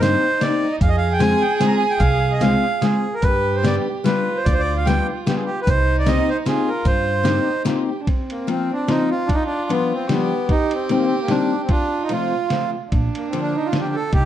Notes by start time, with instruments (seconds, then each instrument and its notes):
Already playing: upright bass G2, violin D#4
0.01 steel-string acoustic guitar A#3 C4 D#4 G4, accordion C5, snare, closed hi-hat
0.41 steel-string acoustic guitar A#3 C4 D#4 G4, accordion D5, snare, closed hi-hat
0.72 accordion D#5
0.81 upright bass F2, violin G#4, accordion F5, kick, closed hi-hat
0.88 accordion D#5
0.97 accordion F5
1.12 accordion G5
1.19 steel-string acoustic guitar G#3 C4 F4 G#4, accordion G#5, snare, closed hi-hat
1.41 accordion G5
1.60 steel-string acoustic guitar G#3 C4 F4 G#4, accordion G#5, snare, closed hi-hat
1.67 accordion A#5
1.77 accordion G#5
1.90 accordion G5
1.99 upright bass C2, accordion F5, kick, closed hi-hat
2.32 accordion D#5
2.41 steel-string acoustic guitar G#3 C4 F4 G#4, accordion F5, snare, closed hi-hat
2.81 steel-string acoustic guitar G#3 C4 F4 G#4, accordion G#4, snare, closed hi-hat
3.14 accordion A#4
3.22 upright bass G2, violin G4, accordion B4, kick, closed hi-hat
3.55 accordion C5
3.63 steel-string acoustic guitar G3 B3 D4 G4, accordion D5, snare, closed hi-hat
4.04 steel-string acoustic guitar G3 B3 D4 G4, violin F4, accordion B4, snare, closed hi-hat
4.36 accordion C5
4.45 upright bass D2, accordion D5, kick, closed hi-hat
4.53 accordion C5
4.59 accordion D5
4.77 accordion F5
4.86 steel-string acoustic guitar G3 B3 D4 G4, accordion G5, snare, closed hi-hat
5.26 steel-string acoustic guitar G3 B3 D4 G4, accordion G4, snare, closed hi-hat
5.36 accordion G#4
5.45 accordion G4
5.60 violin F4, accordion B4
5.67 upright bass C2, violin D#4, accordion C5, kick, closed hi-hat
5.99 accordion D5
6.06 steel-string acoustic guitar A#3 C4 D#4 G4, accordion D#5, snare, closed hi-hat
6.29 accordion C5
6.45 steel-string acoustic guitar A#3 C4 D#4 G4, violin F4, accordion G#4, snare, closed hi-hat
6.68 accordion A#4
6.85 upright bass G2, accordion C5, kick, closed hi-hat
7.23 steel-string acoustic guitar A#3 C4 D#4 G4, violin D#4, snare, closed hi-hat
7.65 steel-string acoustic guitar A#3 C4 D#4 G4, violin F4, snare, closed hi-hat
7.88 violin G4
8.02 violin D4
8.07 violin C4, kick, ride
8.30 accordion A#3, ride
8.47 steel-string acoustic guitar F3 A#3 C4 F4, accordion C4, ride
8.73 accordion D4
8.88 steel-string acoustic guitar F3 A#3 C4 F4, accordion D#4, snare, ride
9.11 accordion F4
9.27 accordion D4, kick, ride
9.31 accordion D#4, violin F4
9.46 accordion D4
9.69 steel-string acoustic guitar F3 G3 B3 D4, accordion B3, ride
9.93 accordion C4
10.08 steel-string acoustic guitar F3 G3 B3 D4, accordion B3, violin G4, snare, ride
10.48 accordion D#4, violin G4, kick, ride
10.71 accordion C4, ride
10.89 steel-string acoustic guitar D#3 G3 A#3 C4, accordion C4, ride
10.98 accordion A#3
11.05 accordion C4
11.21 accordion A#3
11.28 steel-string acoustic guitar D#3 G3 A#3 C4, accordion D4, snare, ride
11.63 accordion C4
11.69 accordion D4, violin F4, kick, ride
12.04 accordion D#4
12.09 steel-string acoustic guitar C3 F3 A3 C4, accordion F4, ride
12.50 steel-string acoustic guitar C3 F3 A3 C4, snare, ride
12.91 upright bass A#1, violin D4, kick, ride
13.15 accordion A#3, ride
13.28 accordion C4
13.32 steel-string acoustic guitar D3 F3 A#3 D4, ride
13.41 accordion D4
13.56 accordion D#4
13.66 accordion F4
13.72 steel-string acoustic guitar D3 F3 A#3 D4, snare, ride
13.80 accordion G4
13.95 accordion A4
14.13 upright bass C2, violin D#4, accordion G4, kick, ride